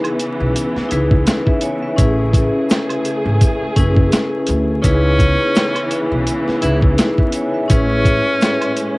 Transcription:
Already playing: C#3 E3 B3 D#4 E4 G#4 B4
0.04 closed hi-hat, high woodblock
0.19 closed hi-hat, maracas
0.40 B1
0.56 closed hi-hat, maracas
0.76 muted upright bass stroke, snare
0.89 C#2 D#4 E4 G#4 B4, closed hi-hat, maracas
1.11 kick
1.27 snare, closed hi-hat, maracas
1.46 B4 E5, kick
1.61 C#5 G#5, closed hi-hat, maracas
1.83 B4 E5
1.96 A1 A3 C#4 E4 G#4 B4, kick, closed hi-hat, maracas
2.33 kick, closed hi-hat, maracas
2.70 snare, closed hi-hat, maracas
2.89 closed hi-hat, high woodblock
3.05 closed hi-hat, maracas
3.26 G#1
3.41 kick, closed hi-hat, maracas
3.61 muted upright bass stroke
3.76 F#1 C#4 E4 G#4 B4, kick, closed hi-hat, maracas
3.97 kick
4.12 snare, closed hi-hat, maracas
4.47 D2, closed hi-hat, maracas
4.82 C#2 C#3 E3 B3 C#4 D#4 E4 G#4 B4, kick, closed hi-hat, maracas
5.19 kick, closed hi-hat, maracas
5.55 snare, closed hi-hat, maracas
5.75 closed hi-hat, high woodblock
5.91 closed hi-hat, maracas
6.11 B1
6.27 closed hi-hat, maracas
6.47 muted upright bass stroke, snare
6.60 C#2 D#4 E4 G#4 B4, closed hi-hat, maracas
6.82 kick
6.98 snare, closed hi-hat, maracas
7.17 B4 E5, kick
7.32 C#5 G#5, closed hi-hat, maracas
7.54 B4 E5
7.68 A1 C#4 E4 G#4 B4, kick, closed hi-hat, maracas
7.72 A2 G#3 C#4
8.05 kick, closed hi-hat, maracas
8.41 snare, closed hi-hat, maracas
8.61 closed hi-hat, high woodblock
8.76 closed hi-hat, maracas

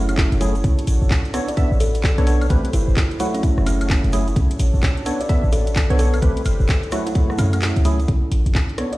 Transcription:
Already playing: F#1 F#3 A3 E4 F#4 G#4 A4 C#5
0.09 C#4, closed hi-hat, high woodblock, shaker
0.18 kick, clap, shaker
0.32 F#1, closed hi-hat, shaker
0.41 F#3 A3 E4 G#4, open hi-hat, shaker
0.55 closed hi-hat, shaker
0.64 B1 D4 F#4, kick, closed hi-hat, shaker
0.78 closed hi-hat, shaker
0.87 A1, open hi-hat, shaker
1.02 A1, shaker
1.11 kick, clap, shaker
1.25 closed hi-hat, shaker
1.34 B3 D4 A4 C#5, cross-stick, open hi-hat, shaker
1.48 D5, closed hi-hat, shaker
1.57 B3 D4 A4 E5, kick, closed hi-hat, shaker
1.72 A1, shaker
1.80 A4, open hi-hat, shaker
1.95 closed hi-hat, shaker
2.04 kick, clap, shaker
2.18 B1 B3 D4 A4 C#5, closed hi-hat, shaker
2.27 B3 D4 A4 C#5, open hi-hat, shaker
2.41 closed hi-hat, high woodblock, shaker
2.50 A1 A3 C4 E4 G4 B4 C5, kick, closed hi-hat, shaker
2.64 closed hi-hat, shaker
2.73 G1 E4, open hi-hat, shaker
2.88 G1, shaker
2.97 kick, clap, shaker
3.11 closed hi-hat, shaker
3.20 F#3 A3 E4 F#4 G#4 A4 C#5, open hi-hat, shaker
3.34 C#4, closed hi-hat, shaker
3.43 kick, closed hi-hat, shaker
3.57 F#1, cross-stick, shaker
3.66 C#4, open hi-hat, high woodblock, shaker
3.81 closed hi-hat, high woodblock, shaker
3.90 kick, clap, shaker
4.04 F#1, closed hi-hat, shaker
4.13 F#3 A3 E4 G#4, open hi-hat, shaker
4.28 closed hi-hat, shaker
4.36 B1 D4 F#4 A4, kick, closed hi-hat, shaker
4.51 closed hi-hat, shaker
4.59 A1, open hi-hat, shaker
4.74 A1, shaker
4.83 kick, clap, shaker
4.97 closed hi-hat, shaker
5.06 B3 D4 A4 C#5, open hi-hat, shaker
5.20 D5, closed hi-hat, shaker
5.29 B3 D4 A4 E5, kick, closed hi-hat, shaker
5.44 A1, shaker
5.52 A4, open hi-hat, shaker
5.67 closed hi-hat, shaker
5.75 kick, clap, shaker
5.90 B1 B3 D4 A4 B4 C#5, closed hi-hat, shaker
5.99 B3 D4 A4 C#5, open hi-hat, shaker
6.14 A4, closed hi-hat, high woodblock, shaker
6.22 A1 A3 C4 E4 G4 B4 C5, kick, closed hi-hat, shaker
6.37 closed hi-hat, shaker
6.45 G1, open hi-hat, high woodblock, shaker
6.60 G1, shaker
6.68 kick, clap, shaker
6.83 closed hi-hat, shaker
6.92 F#3 A3 E4 F#4 G#4 A4 C#5, cross-stick, open hi-hat, shaker
7.06 E4, closed hi-hat, shaker
7.15 E4, kick, closed hi-hat, shaker
7.30 cross-stick, shaker
7.38 F#2 C#4, open hi-hat, high woodblock, shaker
7.53 C#4, closed hi-hat, high woodblock, shaker
7.62 clap, shaker
7.76 C#2, closed hi-hat, shaker
7.85 F#3 A3 E4 G#4, open hi-hat, shaker
8.00 closed hi-hat, shaker
8.08 B1 D4, kick, closed hi-hat
8.32 A1, open hi-hat
8.40 C#5
8.46 A1, closed hi-hat
8.55 kick, clap
8.69 closed hi-hat
8.78 B3 D4 A4 C#5, cross-stick, open hi-hat
8.84 A5
8.93 D5, closed hi-hat

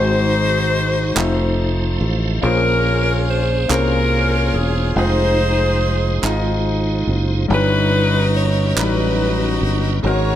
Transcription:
Already playing: G#1 G#2 G#3 D#4 F#4 C5
1.15 F1 F3 A3 D#4 C5, clap
1.58 A5
2.00 A1 F5
2.42 A#1 A#2 A#3 C#4 F4 G#4 A#4 C5
3.29 C5
3.68 C2 A#3 C#4 F4 G#4 A#4, clap
3.72 C5
4.54 E1 G#4
4.95 F1 G#3 D#4 F4 G#4 C5
6.22 G#1 G#3 D#4 F4 D#5, clap
7.07 F#1
7.48 G1 G2 G3 C#4 D#4 F#4 B4
7.52 D#4 B4
8.37 C#5
8.76 A1 F#3 C#4 D#4 F#4 B4, clap
8.82 G3
9.61 G1
10.03 G#1 G#2 G#3 C4 C#4 F#4 A#4 C#5
10.07 C#4 A#4

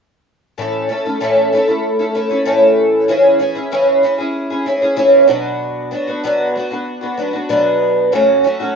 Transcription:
0.58 A2 E3 A3 C#4 E4 A4
0.89 A3 C#4 E4 A4
1.05 A3 C#4 E4 A4
1.20 A2 E3 A3 C#4 E4 A4
1.53 A3 C#4 E4 A4
1.67 A3 C#4 E4 A4
1.99 A3 C#4 E4 A4
2.15 A3 C#4 E4 A4
2.30 A3 C#4 E4 A4
2.45 A2 E3 A3 C#4 E4 A4
3.08 C#3 E3 C#4 E4 G#4
3.39 E3 C#4 E4 G#4
3.55 C#4 E4 G#4
3.72 C#3 E3 C#4 E4 G#4
4.03 E3 C#4 E4 G#4
4.18 C#4 E4 G#4
4.50 C#4 E4 G#4
4.66 E3 C#4 E4 G#4
4.82 C#4 E4 G#4
4.96 C#3 E3 C#4 E4 G#4
5.28 B2 F#3 B3 D4 F#4
5.91 F#3 B3 D4 F#4
6.07 B3 D4 F#4
6.24 B2 F#3 B3 D4 F#4
6.56 F#3 B3 D4 F#4
6.71 B3 D4 F#4
7.01 B3 D4 F#4
7.17 F#3 B3 D4 F#4
7.33 B3 D4 F#4
7.49 B2 F#3 B3 D4 F#4
8.12 F#2 C#3 F#3 A3 C#4 F#4
8.44 F#3 A3 C#4 F#4
8.60 F#3 A3 C#4 F#4

